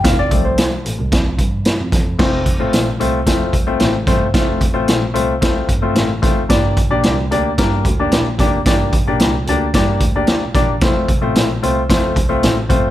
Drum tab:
CC |--------|x-------|--------|--------|
HH |xxxxxxxx|-xxxxxxx|xxxxxxxx|xxxxxxxx|
SD |o-o-o-oo|o-o-o-oo|o-o-o-oo|o-o-o-oo|
BD |oo--oo-o|oo--oo-o|oo--oo-o|oo--oo-o|

CC |--------|--------|
HH |xxxxxxxx|xxxxxxxx|
SD |o-o-o-oo|o-o-o-o-|
BD |oo--oo-o|oo--oo-o|